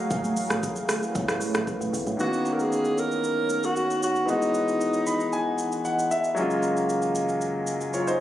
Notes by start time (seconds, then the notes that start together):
Already playing: G#4
0.10 A1 A3 E4 B4 C#5, kick, shaker
0.24 high conga, shaker
0.37 open hi-hat, shaker
0.50 G#1, cross-stick, high conga, shaker
0.63 kick, shaker
0.76 shaker
0.89 cross-stick, open hi-hat, high conga, low conga, shaker
1.03 shaker
1.15 B1, kick, low conga, shaker
1.28 G#1, cross-stick, shaker
1.41 open hi-hat, high conga, shaker
1.55 G#1, cross-stick, shaker
1.67 kick, high conga, shaker
1.81 A1, high conga, shaker
1.93 B1, open hi-hat, low conga, shaker
2.07 A1, high conga, shaker
2.17 D#3 A#3 B3 D#4 F#4 A#4 C#5 A#5, shaker
2.21 C#4 F#4
2.33 shaker
2.45 shaker
2.53 A#4
2.59 G#4, shaker
2.72 shaker
2.85 shaker
2.98 A#4, shaker
3.12 shaker
3.24 shaker
3.49 shaker
3.63 F#4, shaker
3.76 shaker
3.90 shaker
4.03 F#4, shaker
4.16 shaker
4.26 E3 G#3 B3 D#5 F#5 G#5, shaker
4.30 D#4 F#4
4.42 shaker
4.54 shaker
4.68 shaker
4.81 shaker
4.93 shaker
5.07 B5, shaker
5.20 shaker
5.33 G#5, shaker
5.58 shaker
5.72 shaker
5.85 F#5, shaker
5.99 shaker
6.11 E5, shaker
6.24 shaker
6.35 F#1 F#3 G#3 A#3 F5 A#5, shaker
6.39 C#4 F4
6.50 shaker
6.63 shaker
6.77 shaker
6.89 shaker
7.02 shaker
7.15 shaker
7.29 shaker
7.41 shaker
7.67 shaker
7.81 shaker
7.94 F4 C#5, shaker
8.07 D#4 C5, shaker